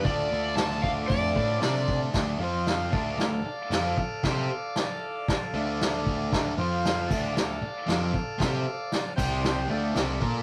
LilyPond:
<<
  \new Staff \with { instrumentName = "Electric slide guitar" } { \time 4/4 \key d \minor \tempo 4 = 115 d''4 a''8 f''8 d''4 d''8. r16 | r1 | r1 | r1 |
r1 | }
  \new Staff \with { instrumentName = "Transistor combo organ" } { \time 4/4 \key d \minor << { r1 | r1 | r1 | r1 |
r2 r8 g''8 f''4 | } \\ { <f' a' d''>1 | r8 <f' c'' f''>4 <a' d'' f''>2~ <a' d'' f''>8~ | <a' d'' f''>1~ | <a' d'' f''>8 <f' c'' f''>4 <a' d'' f''>2~ <a' d'' f''>8~ |
<a' d'' f''>4. <g' c'' g''>4 <a' d'' f''>4. | } >> }
  \new Staff \with { instrumentName = "Distorted electric guitar" } { \time 4/4 \key d \minor <d a d'>4 <d a d'>8 <a d'>4 <a d'>8 <d a d'>4 | <d a d'>8 <f c' f'>4 <d a d'>8 <d a>8 r8 <f c' f'>8 r8 | <c' g' c''>8 r2 <d a d'>4. | <d a d'>8 <f c' f'>4 <d a d'>8 <d a>8 r8 <f c' f'>8 r8 |
<c' g' c''>8 r4 <c g c'>4 <d a d'>8 <c g c'>8 <bes f' bes'>8 | }
  \new Staff \with { instrumentName = "Picked electric bass" } { \clef bass \time 4/4 \key d \minor d,8 d,8 d,4 f,8 a,8 c4 | d,8 f,4 d,8 d,8 r8 f,8 r8 | c8 r2 d,4. | d,8 f,4 d,8 d,8 r8 f,8 r8 |
c8 r4 c,4 d,8 c,8 bes,8 | }
  \new DrumStaff \with { instrumentName = "Drums" } \drummode { \time 4/4 <hho bd>4 <hho sn>8 bd8 <hho bd>8 bd8 <hho sn>8 bd8 | <cymc bd sn>4 <cymc sn>8 bd8 <cymc sn>4 <cymc sn>8 bd8 | <cymc bd sn>4 <cymc sn>4 <cymc bd sn>4 <cymc sn>8 bd8 | <cymc bd sn>4 <cymc sn>8 <cymc bd>8 <cymc sn>4 <cymc sn>8 bd8 |
<cymc bd sn>4 <cymc sn>8 <cymc bd>8 <cymc sn>4 <cymc sn>8 bd8 | }
>>